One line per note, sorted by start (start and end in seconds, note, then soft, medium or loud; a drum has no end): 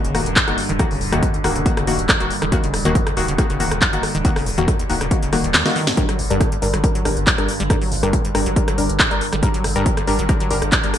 0.00 5.96 G2 medium
0.00 5.96 D3 medium
0.00 0.12 D#3 medium
0.00 0.12 A#3 medium
0.00 0.12 F#4 medium
0.04 0.14 D#1 medium
0.04 0.16 C#3 medium
0.04 closed hi-hat medium
0.15 0.25 D#1 loud
0.15 0.38 D#1 medium
0.15 0.28 D#3 medium
0.15 0.28 A#3 medium
0.15 0.28 F#4 medium
0.15 cross-stick medium
0.15 open hi-hat loud
0.26 0.36 D#1 medium
0.26 closed hi-hat medium
0.36 0.46 F#2 loud
0.36 kick loud
0.36 clap loud
0.36 closed hi-hat medium
0.48 0.58 D#1 medium
0.48 0.60 D#3 medium
0.48 0.60 A#3 medium
0.48 0.60 F#4 medium
0.48 cross-stick medium
0.48 closed hi-hat soft
0.58 open hi-hat loud
0.69 0.79 D#1 medium
0.69 0.73 D#3 loud
0.69 closed hi-hat medium
0.79 0.86 D#2 loud
0.79 0.93 D#3 medium
0.79 0.93 A#3 medium
0.79 0.93 F#4 loud
0.79 kick loud
0.79 cross-stick medium
0.79 closed hi-hat medium
0.91 1.00 D#1 medium
0.91 1.03 C#3 medium
0.91 open hi-hat medium
1.01 1.12 D#1 loud
1.01 1.07 D#1 medium
1.01 open hi-hat loud
1.12 1.22 D#1 medium
1.12 1.24 D#2 loud
1.12 1.25 D#3 medium
1.12 1.25 A#3 medium
1.12 1.25 F#4 loud
1.12 cross-stick medium
1.12 closed hi-hat medium
1.22 1.32 F#2 loud
1.22 kick loud
1.22 closed hi-hat medium
1.34 1.40 D#2 medium
1.34 closed hi-hat medium
1.44 1.55 D#1 loud
1.44 1.50 D#2 medium
1.44 1.63 D#3 medium
1.44 1.63 A#3 medium
1.44 1.63 F#4 medium
1.44 cross-stick medium
1.44 open hi-hat loud
1.56 1.66 D#1 medium
1.56 1.61 C#3 medium
1.56 closed hi-hat medium
1.66 1.84 D#3 medium
1.66 1.84 A#3 medium
1.66 1.84 F#4 medium
1.66 kick loud
1.66 closed hi-hat medium
1.77 1.87 D#1 medium
1.77 1.89 C#3 medium
1.77 cross-stick medium
1.77 closed hi-hat medium
1.87 1.98 D#1 loud
1.87 2.10 D#1 medium
1.87 2.01 D#3 medium
1.87 2.01 A#3 medium
1.87 2.01 F#4 medium
1.87 open hi-hat loud
1.99 2.09 D#1 medium
1.99 closed hi-hat medium
2.09 2.18 F#2 loud
2.09 kick loud
2.09 cross-stick medium
2.09 clap loud
2.09 closed hi-hat medium
2.20 2.30 D#1 medium
2.20 2.33 D#3 medium
2.20 2.33 A#3 medium
2.20 2.33 F#4 medium
2.20 closed hi-hat medium
2.31 open hi-hat loud
2.42 2.52 D#1 medium
2.42 2.45 D#3 loud
2.42 cross-stick medium
2.42 closed hi-hat medium
2.52 2.58 D#2 loud
2.52 2.65 D#3 medium
2.52 2.65 A#3 medium
2.52 2.65 F#4 loud
2.52 kick loud
2.52 closed hi-hat loud
2.63 2.73 D#1 medium
2.63 2.75 C#3 medium
2.63 closed hi-hat medium
2.74 2.84 D#1 loud
2.74 2.80 D#1 medium
2.74 cross-stick medium
2.74 open hi-hat loud
2.85 2.95 D#1 medium
2.85 2.97 D#2 loud
2.85 2.97 D#3 loud
2.85 2.97 A#3 medium
2.85 2.97 F#4 loud
2.85 closed hi-hat medium
2.95 3.05 F#2 loud
2.95 kick loud
2.95 closed hi-hat medium
3.07 3.12 D#2 medium
3.07 cross-stick medium
3.07 closed hi-hat soft
3.17 3.28 D#1 loud
3.17 3.23 D#2 medium
3.17 3.35 D#3 medium
3.17 3.35 A#3 medium
3.17 3.35 F#4 medium
3.17 open hi-hat loud
3.28 3.38 D#1 medium
3.28 3.34 C#3 medium
3.28 closed hi-hat medium
3.38 3.57 D#3 medium
3.38 3.57 A#3 medium
3.38 3.57 F#4 medium
3.38 kick loud
3.38 cross-stick medium
3.38 closed hi-hat medium
3.50 3.59 D#1 medium
3.50 3.62 C#3 medium
3.50 closed hi-hat medium
3.60 3.71 D#1 loud
3.60 3.83 D#1 medium
3.60 3.73 D#3 medium
3.60 3.73 A#3 medium
3.60 3.73 F#4 medium
3.60 open hi-hat loud
3.71 3.81 D#1 medium
3.71 cross-stick medium
3.71 closed hi-hat medium
3.82 3.91 F#2 loud
3.82 kick loud
3.82 clap loud
3.82 closed hi-hat medium
3.93 4.03 D#1 medium
3.93 4.05 D#3 medium
3.93 4.05 A#3 medium
3.93 4.05 F#4 medium
3.93 closed hi-hat medium
4.03 cross-stick medium
4.03 open hi-hat loud
4.15 4.25 D#1 medium
4.15 4.18 D#3 loud
4.15 closed hi-hat soft
4.25 4.31 D#2 loud
4.25 4.38 D#3 medium
4.25 4.38 A#3 medium
4.25 4.38 F#4 loud
4.25 kick loud
4.25 closed hi-hat loud
4.36 4.46 D#1 medium
4.36 4.48 C#3 medium
4.36 cross-stick medium
4.36 open hi-hat medium
4.46 4.57 D#1 loud
4.46 4.53 D#1 medium
4.46 open hi-hat loud
4.58 4.68 D#1 medium
4.58 4.69 D#2 loud
4.58 4.70 D#3 medium
4.58 4.70 A#3 medium
4.58 4.70 F#4 loud
4.58 closed hi-hat medium
4.68 4.77 F#2 loud
4.68 kick loud
4.68 cross-stick medium
4.68 closed hi-hat medium
4.79 4.85 D#2 medium
4.79 closed hi-hat medium
4.89 5.00 D#1 loud
4.89 4.96 D#2 medium
4.89 5.08 D#3 medium
4.89 5.08 A#3 medium
4.89 5.08 F#4 loud
4.89 open hi-hat loud
5.01 5.11 D#1 medium
5.01 5.07 C#3 medium
5.01 cross-stick medium
5.01 closed hi-hat medium
5.11 5.30 D#3 medium
5.11 5.30 A#3 medium
5.11 5.30 F#4 medium
5.11 kick loud
5.11 closed hi-hat medium
5.23 5.32 D#1 medium
5.23 5.31 C#3 medium
5.23 closed hi-hat medium
5.33 5.44 D#1 loud
5.33 5.63 D#3 medium
5.33 5.36 F#3 medium
5.33 5.63 A#3 medium
5.33 5.63 F#4 loud
5.33 cross-stick medium
5.33 open hi-hat loud
5.44 5.54 D#1 medium
5.44 5.50 D#2 medium
5.44 closed hi-hat medium
5.54 5.64 D#2 loud
5.54 snare medium
5.54 clap loud
5.54 closed hi-hat medium
5.66 5.78 D#3 loud
5.66 5.78 A#3 medium
5.66 5.78 F#4 loud
5.66 snare medium
5.66 closed hi-hat medium
5.76 5.89 D#3 loud
5.76 open hi-hat loud
5.87 5.93 F#2 medium
5.87 snare medium
5.87 closed hi-hat medium
5.97 10.98 G2 medium
5.97 6.04 G2 loud
5.97 10.98 D3 medium
5.97 6.11 G3 medium
5.97 6.11 D4 medium
5.97 6.11 A#4 loud
5.97 kick loud
5.97 closed hi-hat loud
6.09 6.18 G1 medium
6.09 6.20 F#3 medium
6.09 cross-stick medium
6.09 closed hi-hat medium
6.19 6.25 G1 medium
6.19 6.30 G1 loud
6.19 open hi-hat loud
6.30 6.40 G1 medium
6.30 6.42 G2 loud
6.30 6.43 G3 medium
6.30 6.43 D4 medium
6.30 6.43 A#4 loud
6.30 closed hi-hat medium
6.41 6.50 A#2 loud
6.41 kick loud
6.41 cross-stick medium
6.41 closed hi-hat medium
6.52 6.58 G2 medium
6.52 closed hi-hat medium
6.62 6.73 G1 loud
6.62 6.68 G2 medium
6.62 6.81 G3 medium
6.62 6.81 D4 medium
6.62 6.81 A#4 medium
6.62 open hi-hat loud
6.74 6.84 G1 medium
6.74 6.79 F#3 medium
6.74 cross-stick medium
6.74 closed hi-hat medium
6.84 7.02 G3 medium
6.84 7.02 D4 medium
6.84 7.02 A#4 medium
6.84 kick loud
6.84 closed hi-hat loud
6.95 7.05 G1 medium
6.95 7.07 F#3 medium
6.95 closed hi-hat medium
7.05 7.16 G1 loud
7.05 7.28 G1 medium
7.05 7.19 G3 medium
7.05 7.19 D4 medium
7.05 7.19 A#4 medium
7.05 cross-stick medium
7.05 open hi-hat loud
7.17 7.27 G1 medium
7.17 closed hi-hat medium
7.27 7.36 A#2 loud
7.27 kick loud
7.27 clap loud
7.27 closed hi-hat medium
7.38 7.48 G1 medium
7.38 7.51 G3 medium
7.38 7.51 D4 medium
7.38 7.51 A#4 medium
7.38 cross-stick medium
7.38 closed hi-hat medium
7.49 open hi-hat loud
7.60 7.70 G1 medium
7.60 7.63 G3 loud
7.60 closed hi-hat medium
7.70 7.76 G2 loud
7.70 7.83 G3 medium
7.70 7.83 D4 medium
7.70 7.83 A#4 loud
7.70 kick loud
7.70 cross-stick medium
7.70 closed hi-hat loud
7.81 7.91 G1 medium
7.81 7.93 F#3 medium
7.81 open hi-hat medium
7.92 8.02 G1 loud
7.92 7.98 G1 medium
7.92 open hi-hat loud
8.03 8.13 G1 medium
8.03 8.15 G2 loud
8.03 8.15 G3 medium
8.03 8.15 D4 medium
8.03 8.15 A#4 loud
8.03 cross-stick medium
8.03 closed hi-hat medium
8.13 8.23 A#2 loud
8.13 kick loud
8.13 closed hi-hat loud
8.25 8.30 G2 medium
8.25 closed hi-hat medium
8.35 8.46 G1 loud
8.35 8.41 G2 medium
8.35 8.53 G3 medium
8.35 8.53 D4 medium
8.35 8.53 A#4 medium
8.35 cross-stick medium
8.35 open hi-hat loud
8.46 8.56 G1 medium
8.46 8.52 F#3 medium
8.46 closed hi-hat medium
8.56 8.75 G3 medium
8.56 8.75 D4 medium
8.56 8.75 A#4 medium
8.56 kick loud
8.56 closed hi-hat loud
8.68 8.77 G1 medium
8.68 8.79 F#3 medium
8.68 cross-stick medium
8.68 closed hi-hat medium
8.78 9.01 G1 medium
8.78 8.89 G1 loud
8.78 8.91 G3 medium
8.78 8.91 D4 medium
8.78 8.91 A#4 medium
8.78 open hi-hat loud
8.89 8.99 G1 medium
8.89 closed hi-hat medium
9.00 9.09 A#2 loud
9.00 kick loud
9.00 cross-stick medium
9.00 clap loud
9.00 closed hi-hat loud
9.11 9.21 G1 medium
9.11 9.23 G3 medium
9.11 9.23 D4 medium
9.11 9.23 A#4 medium
9.11 closed hi-hat medium
9.21 open hi-hat loud
9.33 9.43 G1 medium
9.33 9.36 G3 loud
9.33 cross-stick medium
9.33 closed hi-hat medium
9.43 9.49 G2 loud
9.43 9.56 G3 medium
9.43 9.56 D4 medium
9.43 9.56 A#4 loud
9.43 kick loud
9.43 closed hi-hat loud
9.54 9.64 G1 medium
9.54 9.66 F#3 medium
9.54 closed hi-hat medium
9.64 9.71 G1 medium
9.64 9.75 G1 loud
9.64 cross-stick medium
9.64 open hi-hat loud
9.76 9.86 G1 medium
9.76 9.87 G2 loud
9.76 9.88 G3 medium
9.76 9.88 D4 medium
9.76 9.88 A#4 loud
9.76 closed hi-hat medium
9.86 9.95 A#2 loud
9.86 kick loud
9.86 closed hi-hat loud
9.97 10.03 G2 medium
9.97 cross-stick medium
9.97 closed hi-hat medium
10.07 10.18 G1 loud
10.07 10.14 G2 medium
10.07 10.26 G3 medium
10.07 10.26 D4 medium
10.07 10.26 A#4 medium
10.07 open hi-hat loud
10.19 10.29 G1 medium
10.19 10.24 F#3 medium
10.19 closed hi-hat medium
10.29 10.48 G3 medium
10.29 10.48 D4 medium
10.29 10.48 A#4 medium
10.29 kick loud
10.29 cross-stick medium
10.29 closed hi-hat medium
10.40 10.50 G1 medium
10.40 10.52 F#3 medium
10.40 closed hi-hat medium
10.51 10.61 G1 loud
10.51 10.74 G1 medium
10.51 10.64 G3 medium
10.51 10.64 D4 medium
10.51 10.64 A#4 medium
10.51 open hi-hat loud
10.62 10.72 G1 medium
10.62 cross-stick medium
10.62 closed hi-hat medium
10.72 10.82 A#2 loud
10.72 kick loud
10.72 clap loud
10.72 closed hi-hat medium
10.84 10.94 G1 medium
10.84 10.96 G3 medium
10.84 10.96 D4 medium
10.84 10.96 A#4 medium
10.84 closed hi-hat medium
10.94 cross-stick medium
10.94 open hi-hat loud